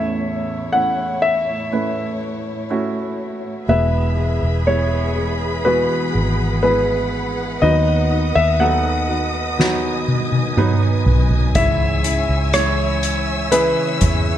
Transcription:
Already playing: A1 E2 A2 A3 C#4 E4 C#5 E5
0.73 A3 C#4 E4 C#5 F#5
1.22 E5
1.72 A3 C#4 E4 B4
2.70 A3 C#4 E4 F#4
3.68 E1 E2 B2 E3 G#3 B3 E4 G#4 B4 E5 B5
4.17 E3 G#3 B3 G#4
4.43 E1
4.66 E3 G#3 B3 E4 G#4 C#5
5.15 E3 G#3 B3 G#4
5.65 E2 B2 E3 G#3 B3 E4 F#4 G#4 B4 F#5
6.15 G#1
6.63 E3 G#3 B3 E4 G#4 B4
7.62 D#2 D#3 F#3 B3 D#4 F#4 B4 D#5 D#6
8.10 B3 D#4 F#4
8.35 D#2 E5
8.59 D#3 F#3 B3 D#4 F#4 A4 F#5
9.09 B3 D#4 F#4
9.58 D#3 F#3 B3 D#4 F#4 G#5, snare
10.08 high tom
10.32 high tom
10.56 D#3 F#3 B3 D#4 F#4 B4, mid tom
11.06 B1, floor tom
11.31 floor tom
11.54 C#2 G#2 C#3 E3 G#3 C#4 E4 C#5 E5 E6, kick, closed hi-hat
12.04 G#3 C#4 E4, closed hi-hat
12.29 C#2
12.52 E3 G#3 C#4 E4 C#5, cross-stick, closed hi-hat
13.03 closed hi-hat
13.51 C#3 E3 G#3 C#4 E4 G#4 B4, closed hi-hat
14.01 E2, kick, closed hi-hat

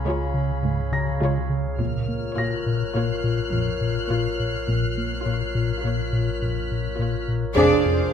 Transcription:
Already playing: C#2 G#4 C#5 F5 G#5 A#5 B5
0.05 C#3 G#3 F4 C#5
0.25 B5
0.34 C#3
0.63 G#2 C#3
0.92 C#3 A#5 A#6
1.21 C#3 G#3 F4 C#5
1.50 C#3
1.78 A#1 A#2 F4 A#4 C#5 F6
2.08 A#3
2.37 A#2 A#3 F4 C#5 F#6 A#6
2.66 A#2
2.94 A#2 A#3 F4 C#5 C7
3.24 A#2
3.53 F2 A#2
3.81 A#2
4.10 A#2 A#3 F4 C#5
4.40 A#2
4.67 A#1 A#2 F4 A#4 C#5
4.98 A#3
5.25 A#2 A#3 F4 C#5
5.55 A#2
5.82 A#2 A#3 F4 C#5
6.13 A#2
6.17 B6
6.41 F2 A#2
6.71 A#2
6.97 A#2 A#3 F4 C#5
7.28 A#2
7.55 F1 D2 F2 D4 G#4 C5 D5 F5 C6 F6 G6
7.86 F2

